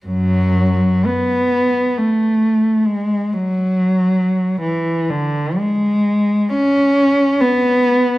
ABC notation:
X:1
M:3/4
L:1/8
Q:1/4=68
K:F#m
V:1 name="Cello" clef=bass
[F,,F,]2 B,2 A,2 | G, F,3 E, D, | G,2 C2 B,2 |]